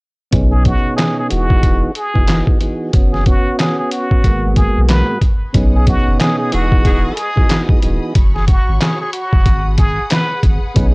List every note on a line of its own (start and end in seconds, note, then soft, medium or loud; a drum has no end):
0.31 0.75 B1 loud
0.31 1.30 B2 loud
0.31 1.29 B3 medium
0.31 1.30 C#4 medium
0.31 1.30 D#4 medium
0.31 1.31 G#4 loud
0.31 kick loud
0.31 closed hi-hat loud
0.52 0.64 G#4 medium
0.65 0.95 F#4 medium
0.65 kick medium
0.65 closed hi-hat medium
0.97 1.15 G#4 medium
0.97 snare loud
0.97 clap medium
0.97 closed hi-hat medium
1.19 1.30 G#4 medium
1.29 1.84 E1 loud
1.29 1.91 E3 medium
1.29 1.91 B3 medium
1.29 1.92 D#4 medium
1.29 1.92 F#4 medium
1.29 1.92 G#4 loud
1.29 closed hi-hat medium
1.50 kick medium
1.63 kick medium
1.63 closed hi-hat medium
1.95 2.45 G#4 medium
1.95 closed hi-hat medium
2.14 2.42 F#1 medium
2.14 2.25 E3 medium
2.14 2.26 B3 medium
2.14 2.27 D#4 medium
2.14 2.28 F#4 medium
2.14 2.28 G#4 loud
2.14 kick medium
2.27 2.58 E3 medium
2.27 2.58 B3 medium
2.27 2.59 D#4 medium
2.27 2.59 F#4 medium
2.27 2.59 G#4 medium
2.27 snare loud
2.27 clap medium
2.27 closed hi-hat medium
2.47 kick medium
2.60 2.91 E3 medium
2.60 2.91 B3 medium
2.60 2.92 D#4 medium
2.60 2.92 F#4 medium
2.60 2.92 G#4 medium
2.60 closed hi-hat medium
2.93 3.36 F#1 loud
2.93 3.24 B3 loud
2.93 3.24 C#4 medium
2.93 3.25 F#4 loud
2.93 kick loud
2.93 closed hi-hat loud
3.13 3.25 G#4 medium
3.13 snare soft
3.26 4.24 B3 medium
3.26 4.25 C#4 medium
3.26 3.55 F#4 medium
3.26 4.25 F#4 loud
3.26 kick medium
3.26 closed hi-hat medium
3.59 3.76 G#4 medium
3.59 snare loud
3.59 clap medium
3.59 closed hi-hat medium
3.79 3.91 G#4 medium
3.91 4.53 F#4 medium
3.91 closed hi-hat medium
4.11 kick medium
4.24 4.67 G#1 loud
4.24 4.55 G#2 medium
4.24 4.55 G#3 medium
4.24 4.55 A#3 medium
4.24 4.56 B3 medium
4.24 4.56 F#4 medium
4.24 kick medium
4.24 closed hi-hat medium
4.56 5.17 G#2 medium
4.56 5.18 G#3 medium
4.56 5.18 A#3 medium
4.56 5.18 B3 medium
4.56 5.19 F#4 loud
4.56 4.86 G#4 medium
4.56 kick medium
4.56 closed hi-hat medium
4.77 5.03 B1 medium
4.88 5.18 B4 medium
4.88 snare loud
4.88 clap medium
4.88 closed hi-hat medium
5.21 kick medium
5.21 closed hi-hat medium
5.53 5.97 B1 loud
5.53 6.52 B2 loud
5.53 6.50 B3 medium
5.53 6.52 C#4 medium
5.53 6.51 D#4 medium
5.53 8.12 G#4 medium
5.53 6.53 G#4 loud
5.53 6.51 F#5 medium
5.53 10.94 B5 medium
5.53 8.12 D#6 medium
5.53 kick loud
5.53 closed hi-hat loud
5.75 5.87 G#4 medium
5.87 6.17 F#4 medium
5.87 kick loud
5.87 closed hi-hat medium
6.07 6.18 F#1 loud
6.20 6.37 G#4 medium
6.20 snare loud
6.20 clap medium
6.20 closed hi-hat medium
6.39 6.51 G#4 medium
6.51 7.06 E1 loud
6.51 7.13 E3 loud
6.51 6.68 E3 medium
6.51 7.13 B3 medium
6.51 6.68 D#4 medium
6.51 7.13 D#4 medium
6.51 7.14 F#4 medium
6.51 7.15 F#4 medium
6.51 6.68 G#4 loud
6.51 7.14 G#4 loud
6.51 8.14 D#5 medium
6.51 closed hi-hat medium
6.72 kick loud
6.85 7.30 E3 loud
6.85 7.30 D#4 loud
6.85 7.30 G#4 loud
6.85 kick loud
6.85 closed hi-hat medium
7.15 7.65 G#4 medium
7.15 closed hi-hat medium
7.35 7.47 E3 medium
7.35 7.48 B3 medium
7.35 7.48 D#4 medium
7.35 7.49 F#4 medium
7.35 7.50 G#4 loud
7.35 kick medium
7.48 7.80 E3 medium
7.48 7.80 B3 medium
7.48 7.80 D#4 medium
7.48 7.81 F#4 medium
7.48 7.81 G#4 medium
7.48 snare loud
7.48 clap medium
7.48 closed hi-hat medium
7.69 kick loud
7.82 7.99 D#1 loud
7.82 8.13 E3 medium
7.82 8.13 B3 medium
7.82 8.13 D#4 medium
7.82 8.14 F#4 medium
7.82 8.14 G#4 medium
7.82 closed hi-hat medium
8.15 8.58 F#1 loud
8.15 9.45 F#4 medium
8.15 9.45 C#5 medium
8.15 9.45 C#6 medium
8.15 kick loud
8.15 closed hi-hat loud
8.35 8.46 G#4 medium
8.35 snare soft
8.47 8.77 F#4 medium
8.47 kick loud
8.47 closed hi-hat medium
8.68 8.79 G#1 loud
8.81 8.98 G#4 medium
8.81 snare loud
8.81 clap medium
8.81 closed hi-hat medium
9.01 9.13 G#4 medium
9.13 9.75 F#4 medium
9.13 closed hi-hat medium
9.33 9.44 F#1 loud
9.33 kick loud
9.45 9.99 G#1 loud
9.45 10.94 G#4 medium
9.45 10.94 F#5 medium
9.45 10.74 D#6 medium
9.45 kick loud
9.45 closed hi-hat medium
9.78 10.08 G#4 medium
9.78 kick loud
9.78 closed hi-hat medium
10.10 10.41 B4 medium
10.10 snare loud
10.10 clap loud
10.10 closed hi-hat medium
10.43 10.59 G#1 medium
10.43 kick medium
10.43 closed hi-hat medium
10.74 10.94 B1 loud
10.74 10.94 B2 loud
10.74 10.94 B3 medium
10.74 10.94 C#4 medium
10.74 10.94 D#4 medium
10.74 10.94 G#4 loud
10.74 10.94 D#6 medium
10.74 kick loud
10.74 closed hi-hat loud